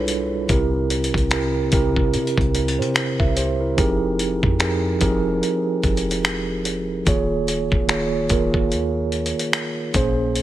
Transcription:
Already playing: 808-style bass B1, tine electric piano G3 D4 E4 F4 G#4 A4 B4 C#5
0.08 closed hi-hat
0.48 808-style bass C2, tine electric piano C3 C4 E4 G4 A#4, kick, closed hi-hat
0.90 closed hi-hat
1.04 closed hi-hat
1.14 808-style bass C2, kick, closed hi-hat
1.30 tine electric piano C3 C4 E4 G4 A#4, finger snap, closed hi-hat
1.72 808-style bass C2, tine electric piano C3 C4 E4 G4 A#4, kick, closed hi-hat
1.96 kick
2.14 808-style bass C3, closed hi-hat
2.27 closed hi-hat
2.38 808-style bass C2, kick, closed hi-hat
2.55 tine electric piano E4 A#4, closed hi-hat
2.68 closed hi-hat
2.79 808-style bass C3, tine electric piano G4 C5, closed hi-hat
2.96 finger snap, closed hi-hat
3.20 808-style bass C2, tine electric piano A#4 E5, kick
3.37 tine electric piano G4 C5, closed hi-hat
3.61 tine electric piano E4 A#4
3.76 808-style bass F1, tine electric piano F3 C4 D#4 G4 G#4 A#4, kick, closed hi-hat
4.19 closed hi-hat
4.43 808-style bass F2, kick
4.59 tine electric piano F3 C4 D#4 G4 G#4 A#4, finger snap, closed hi-hat
5.00 808-style bass F1, tine electric piano F3 C4 D#4 G4 G#4 A#4, kick, closed hi-hat
5.43 closed hi-hat
5.83 808-style bass F1, kick, closed hi-hat
5.97 closed hi-hat
6.11 closed hi-hat
6.25 finger snap, closed hi-hat
6.65 closed hi-hat
7.05 808-style bass D#1, tine electric piano D#3 A#3 F4 G#4 C#5, kick, closed hi-hat
7.48 closed hi-hat
7.72 808-style bass D#1, kick
7.87 tine electric piano D#3 A#3 F4 G#4 C#5, finger snap, closed hi-hat
8.29 808-style bass D#1, tine electric piano D#3 A#3 F4 G#4 A#4, kick, closed hi-hat
8.54 kick
8.72 808-style bass D#2, closed hi-hat
9.12 closed hi-hat
9.26 closed hi-hat
9.39 closed hi-hat
9.53 finger snap, closed hi-hat
9.93 808-style bass A#1, tine electric piano A#2 A#3 C#4 G#4 C5, kick, closed hi-hat
10.36 closed hi-hat

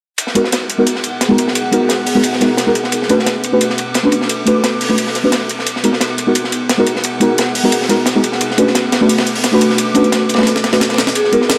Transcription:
0.18 ambient pad B3 G#4 F#5, closed hi-hat, ride
0.27 snare
0.35 synth stab G#3 B3 D#4 F#4 A#4, closed hi-hat, ride
0.44 snare
0.52 snare, closed hi-hat, ride
0.70 closed hi-hat, ride
0.78 synth stab G#3 B3 D#4 F#4 A#4
0.87 closed hi-hat, ride
0.95 snare
1.04 closed hi-hat, ride
1.21 snare, closed hi-hat, ride
1.29 synth stab G#3 B3 D#4 F#4 A#4
1.38 closed hi-hat, ride
1.48 snare
1.55 closed hi-hat, ride
1.71 synth stab G#3 B3 D#4 F#4 A#4, closed hi-hat, ride
1.89 snare, closed hi-hat, ride
2.06 closed hi-hat, open hi-hat
2.15 synth stab G#3 B3 D#4 F#4 A#4
2.23 closed hi-hat, ride
2.33 snare
2.40 synth stab G#3 B3 D#4 F#4 A#4, snare, closed hi-hat, ride
2.57 snare, closed hi-hat, ride
2.66 synth stab G#3 B3 D#4 F#4 A#4
2.75 closed hi-hat, ride
2.84 snare
2.92 ambient pad A4 D6, closed hi-hat, ride
3.02 snare
3.09 synth stab A3 C#4 D4 F#4 B4, closed hi-hat, ride
3.19 snare
3.26 snare, closed hi-hat, ride
3.44 closed hi-hat, ride
3.52 synth stab A3 C#4 D4 F#4 B4
3.61 closed hi-hat, ride
3.70 snare
3.78 closed hi-hat, ride
3.94 snare, closed hi-hat, ride
4.03 synth stab A3 C#4 D4 F#4 B4
4.12 closed hi-hat, ride
4.21 snare
4.29 closed hi-hat, ride
4.45 synth stab A3 C#4 D4 F#4 B4, closed hi-hat, ride
4.64 snare, closed hi-hat, ride
4.81 closed hi-hat, open hi-hat
4.89 synth stab A3 C#4 D4 F#4 B4
4.98 closed hi-hat, ride
5.07 snare
5.15 snare, closed hi-hat, ride
5.24 synth stab A3 C#4 D4 F#4 B4
5.32 snare, closed hi-hat, ride
5.49 closed hi-hat, ride
5.59 snare
5.66 ambient pad B3 G#4 F#5, closed hi-hat, ride
5.76 snare
5.83 synth stab G#3 B3 D#4 F#4 A#4, closed hi-hat, ride
5.93 snare
6.01 snare, closed hi-hat, ride
6.18 closed hi-hat, ride
6.26 synth stab G#3 B3 D#4 F#4 A#4
6.35 closed hi-hat, ride
6.44 snare
6.52 closed hi-hat, ride
6.69 snare, closed hi-hat, ride
6.77 synth stab G#3 B3 D#4 F#4 A#4
6.87 closed hi-hat, ride
6.96 snare
7.04 closed hi-hat, ride
7.20 synth stab G#3 B3 D#4 F#4 A#4, closed hi-hat, ride
7.38 snare, closed hi-hat, ride
7.55 closed hi-hat, open hi-hat
7.64 synth stab G#3 B3 D#4 F#4 A#4
7.72 closed hi-hat, ride
7.82 snare
7.89 synth stab G#3 B3 D#4 F#4 A#4, snare, closed hi-hat, ride
8.06 snare, closed hi-hat, ride
8.15 synth stab G#3 B3 D#4 F#4 A#4
8.24 closed hi-hat, ride
8.32 snare
8.41 ambient pad A4 D6, closed hi-hat, ride
8.51 snare
8.57 synth stab A3 C#4 D4 F#4 B4, closed hi-hat, ride
8.67 snare
8.75 snare, closed hi-hat, ride
8.92 snare, closed hi-hat, ride
9.01 synth stab A3 C#4 D4 F#4 B4
9.09 closed hi-hat, open hi-hat
9.18 snare, ride
9.27 closed hi-hat
9.35 open hi-hat
9.44 snare, closed hi-hat, ride
9.52 synth stab A3 C#4 D4 F#4 B4
9.61 closed hi-hat, ride
9.70 snare
9.78 closed hi-hat, ride
9.94 synth stab A3 C#4 D4 F#4 B4, closed hi-hat, ride
10.04 closed hi-hat
10.12 snare, closed hi-hat, ride
10.29 closed hi-hat, ride
10.34 synth stab A3, snare, ride
10.38 synth stab C#4 D4 F#4 B4, snare, ride
10.42 snare, ride
10.47 snare, closed hi-hat, ride
10.56 snare
10.64 snare, closed hi-hat, ride
10.72 synth stab A3 C#4 D4 F#4 B4, snare, ride
10.80 snare, closed hi-hat, ride
10.89 snare, closed hi-hat, ride
10.94 snare, ride
10.98 snare, closed hi-hat, ride
11.07 snare
11.15 ambient pad B3 G#4 F#5, vibraphone G#4, closed hi-hat, ride
11.24 snare
11.32 synth stab G#3 B3 D#4 F#4 A#4, vibraphone A#4, closed hi-hat, ride
11.41 snare
11.49 snare, closed hi-hat, ride

